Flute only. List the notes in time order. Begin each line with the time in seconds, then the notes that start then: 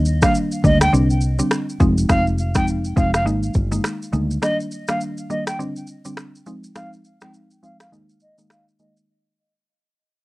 0.23 F5
0.65 D#5
0.81 G5
2.10 F5
2.56 G5
2.97 F5
3.14 F5
4.43 D#5
4.89 F5
5.30 D#5
5.47 G5
6.76 F5
7.22 G5
7.64 F5
7.81 F5
8.22 D#5
8.51 F5
8.80 D#5